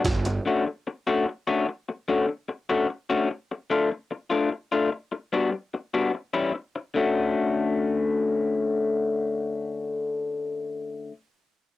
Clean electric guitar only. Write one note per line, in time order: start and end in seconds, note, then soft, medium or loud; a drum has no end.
0.05 muted clean electric guitar stroke soft
0.26 muted clean electric guitar stroke medium
0.46 0.66 D3 medium
0.46 0.66 A3 medium
0.46 0.66 C#4 medium
0.46 0.65 F#4 medium
0.67 muted clean electric guitar stroke soft
0.87 muted clean electric guitar stroke soft
1.07 1.27 D3 medium
1.07 1.27 A3 medium
1.07 1.27 C#4 medium
1.07 1.27 F#4 loud
1.28 muted clean electric guitar stroke soft
1.47 1.67 D3 medium
1.47 1.68 A3 medium
1.47 1.67 C#4 medium
1.47 1.67 F#4 medium
1.69 muted clean electric guitar stroke soft
1.89 muted clean electric guitar stroke soft
2.08 2.28 D3 medium
2.08 2.28 A3 medium
2.08 2.28 C#4 medium
2.08 2.27 F#4 medium
2.28 muted clean electric guitar stroke soft
2.48 muted clean electric guitar stroke soft
2.69 2.88 D3 medium
2.69 2.88 A3 medium
2.69 2.89 C#4 medium
2.69 2.89 F#4 medium
3.10 3.30 D3 medium
3.10 3.30 A3 medium
3.10 3.30 C#4 medium
3.10 3.30 F#4 medium
3.31 muted clean electric guitar stroke soft
3.51 muted clean electric guitar stroke soft
3.70 3.90 D3 medium
3.70 3.90 A3 medium
3.70 3.91 D4 medium
3.70 3.90 F4 medium
3.91 muted clean electric guitar stroke soft
4.11 muted clean electric guitar stroke soft
4.30 4.50 D3 medium
4.30 4.51 A3 medium
4.30 4.51 D4 medium
4.30 4.51 F4 medium
4.51 muted clean electric guitar stroke soft
4.72 4.91 D3 medium
4.72 4.91 A3 medium
4.72 4.91 D4 medium
4.72 4.92 F4 medium
4.92 muted clean electric guitar stroke soft
5.12 muted clean electric guitar stroke medium
5.33 5.52 G3 medium
5.33 5.52 B3 medium
5.33 5.51 D4 medium
5.33 5.51 F#4 medium
5.52 muted clean electric guitar stroke soft
5.74 muted clean electric guitar stroke soft
5.94 6.13 G3 medium
5.94 6.14 B3 medium
5.94 6.14 D4 medium
5.94 6.13 F#4 medium
6.14 muted clean electric guitar stroke soft
6.33 6.53 E3 medium
6.33 6.54 G3 medium
6.33 6.54 C#4 medium
6.33 6.54 E4 medium
6.54 muted clean electric guitar stroke soft
6.76 muted clean electric guitar stroke soft
6.94 11.11 D3 medium
6.94 11.13 A3 medium
6.94 11.13 C#4 medium
6.94 11.14 F#4 medium